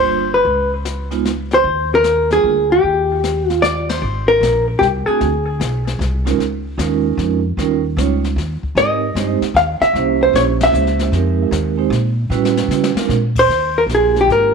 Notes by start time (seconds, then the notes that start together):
Already playing: G1 G3 A#3 D4 F4 C5
0.34 B4
0.45 C#2, brush sweep
0.85 snare, hi-hat pedal
1.11 G#3 B3 D#4 F4, snare
1.25 snare, hi-hat pedal
1.51 C5, snare
1.64 D#2, brush sweep
1.95 A#4
2.04 snare, hi-hat pedal
2.31 G3 A#3 D4 F4 G#4, snare
2.43 D2
2.72 G4
2.84 D#2, brush sweep
3.24 snare, hi-hat pedal
3.50 F4, snare
3.62 D5, snare, hi-hat pedal
3.89 C5, snare, ride
4.02 G#1, brush sweep
4.28 A#4
4.41 A#1, snare, hi-hat pedal
4.79 C2 G4, snare
5.06 A3 C4 D4 F#4 G#4, muted upright bass stroke
5.21 D2, brush sweep, snare
5.60 B1, snare, hi-hat pedal
5.87 snare
5.99 C2, snare
6.25 G#3 C#4 D#4 F4 A#4, snare
6.38 C#2, brush sweep, snare
6.78 D#2 G#3 C#4 D#4 F4 A#4, snare, hi-hat pedal
7.17 F2, snare
7.57 D#2 G3 C#4 D#4 F4 A#4, brush sweep, snare
7.97 C#2 G3 C#4 D#4 F4 C#5, snare, hi-hat pedal
8.24 snare
8.36 D#2, snare
8.63 muted upright bass stroke, kick
8.75 G#2 G#3 C4 D#4 G4 A#4 D#5, brush sweep, snare
9.15 G2 G#3 C4 D#4 G4 C5, snare, hi-hat pedal
9.41 muted upright bass stroke, snare
9.54 D#2 F5, snare
9.81 E5, muted upright bass stroke, snare
9.93 C2 A#3 C#4 E4 G4 C5, brush sweep, snare
10.23 C5
10.33 A#1 C#5, snare, hi-hat pedal
10.61 E5, snare, ride
10.73 C#2, hi-hat pedal
10.87 snare
10.99 snare
11.12 F2 G#3 C4 D#4 G4 A#4, brush sweep, snare
11.51 D#2, snare, hi-hat pedal
11.77 G#3 C4 D#4 G4 C5
11.90 A#2, snare
12.30 A2 G3 C#4 E4 F#4 B4, snare
12.45 snare
12.57 snare
12.68 C#3, snare, hi-hat pedal
12.84 snare
12.95 G#3 C4 D4 F4 A#4, muted upright bass stroke, snare
13.09 A#2, snare
13.36 C5, kick, crash
13.47 D#2, brush sweep, snare
13.78 A#4
13.86 A#1 A#3 D4 F4 G4, snare, hi-hat pedal
13.95 G#4
14.16 snare
14.21 G4
14.27 G#1, snare
14.32 A#4